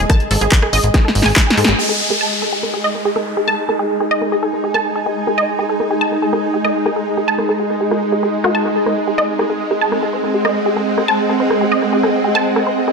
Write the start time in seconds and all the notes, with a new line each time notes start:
Already playing: G#3 G#4 D#5 G#5
0.10 A5, kick, cross-stick, closed hi-hat
0.20 closed hi-hat
0.31 G#1 A4, open hi-hat
0.41 G#1 G#4, cross-stick, closed hi-hat
0.52 kick, clap, closed hi-hat
0.62 G#4, cross-stick
0.73 G#1 D#5, open hi-hat
0.84 G#1, closed hi-hat
0.94 G#4, kick, snare, closed hi-hat
1.05 A4, snare
1.15 G#1, open hi-hat
1.22 G#1 G#5, snare, open hi-hat
1.36 kick, snare, clap, closed hi-hat
1.47 G#5, snare
1.57 G#2 A4, open hi-hat
1.65 G#1 G#4, snare, closed hi-hat
1.79 G#3 D#4 G#4, downlifter
1.89 A4, cross-stick
2.10 G#4 D#5, cross-stick
2.21 A5
2.42 A4, cross-stick
2.49 G#4 G#5
2.63 cross-stick
2.74 G#4
2.84 D#5
2.95 cross-stick
3.05 G#4
3.16 A4, cross-stick
3.37 G#4
3.48 A5, cross-stick
3.69 A4, cross-stick
3.79 G#4
4.00 G#4, cross-stick
4.11 D#5
4.22 cross-stick
4.32 G#4
4.43 A4
4.53 cross-stick
4.64 G#4
4.74 A5, cross-stick
4.96 A4
5.06 G#4, cross-stick
5.27 G#4, cross-stick
5.38 D#5
5.59 G#4, cross-stick
5.69 A4
5.80 cross-stick
5.91 G#4
6.01 A5
6.12 cross-stick
6.22 A4
6.33 G#4, cross-stick
6.54 G#4
6.64 D#5, cross-stick
6.86 G#4, cross-stick
6.96 A4
7.17 G#4, cross-stick
7.28 A5
7.38 cross-stick
7.49 A4
7.60 G#4
7.70 cross-stick
7.81 G#4
7.91 F#4, cross-stick
8.12 G#4
8.23 G#4, cross-stick
8.44 F#4, cross-stick
8.55 C4 A5
8.65 cross-stick
8.76 A4
8.86 C5, cross-stick
9.06 G#4 F#5
9.18 D#5, cross-stick
9.39 G#4, cross-stick
9.50 A4
9.71 G#4, cross-stick
9.81 A5
9.92 cross-stick
10.03 A4
10.13 C5
10.24 cross-stick
10.34 G#4
10.45 D#5, cross-stick
10.66 G#4
10.77 A4, cross-stick
10.98 G#4, cross-stick
11.08 A5
11.29 A4, cross-stick
11.40 C5
11.50 cross-stick
11.61 G#4
11.72 D#5
11.82 cross-stick
11.93 G#4
12.03 A4, cross-stick
12.24 G#4
12.35 A5, cross-stick
12.56 A4, cross-stick
12.67 C5
12.88 G#4, cross-stick